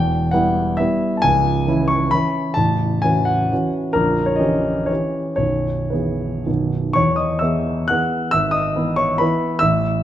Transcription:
Already playing: E1 E2 G5
0.31 G3 B3 E4 F#5
0.77 G3 B3 E4 E5
1.17 A5
1.22 C#1 C#2 G#5
1.67 E3 C#4 E4
1.88 C#6
2.11 E3 C#4 E4 B5
2.54 A0 A1 A5
3.02 E3 C#4 F#4 G#5
3.25 F#5
3.52 E3 C#4 F#4
3.93 A#0 A#1 A#4
4.26 C#5
4.36 E3 C#4 D#5
4.40 G4
4.86 E3 C#4 G4 C#5
5.36 B0 B1 C#5
5.90 E3 B3 G#4 B4
6.46 B0 B1 D#3 B3 F#4
6.93 E2 C#5 C#6
7.16 D#5 D#6
7.39 E3 B3 G#4 E5 E6
7.88 E3 B3 G#4 F#5 F#6
8.31 G#1 E5 E6
8.51 D#5 D#6
8.76 E3 B3 E4
8.96 C#5 C#6
9.18 E3 B3 E4 B4 B5
9.59 A1 E5 E6

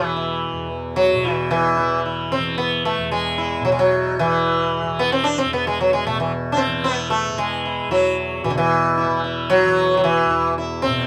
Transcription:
Already playing: E2 B2 E3
0.16 E4
0.53 E2
0.96 F#3
1.13 B2
1.25 E4
1.32 E3
1.51 E3
1.77 E3 E4
2.06 E4
2.32 C4
2.38 E3
2.58 B3
2.85 A3
2.98 E2
3.12 G#3
3.38 E4
3.60 B2
3.65 F#3
3.72 G#3
3.79 F#3
4.19 E3
4.83 E3
4.99 B3
5.12 C4
5.24 D4
5.38 C4
5.45 E2
5.53 B3
5.67 G#3
5.81 F#3
5.93 G#3
6.05 B2 A3
6.20 E3
6.52 D4
6.57 C4
6.67 E3
6.84 B3 E4
7.10 A3
7.29 E3
7.38 G#3
7.65 E4
7.88 E2 F#3 E4
8.43 B2 E3
8.50 D3
8.58 E3
8.98 E4
9.04 E3
9.24 E4
9.50 F#3
9.64 E3
9.97 F#3
10.04 E3
10.26 E2
10.31 E4
10.58 E4
10.82 C4
10.87 B2

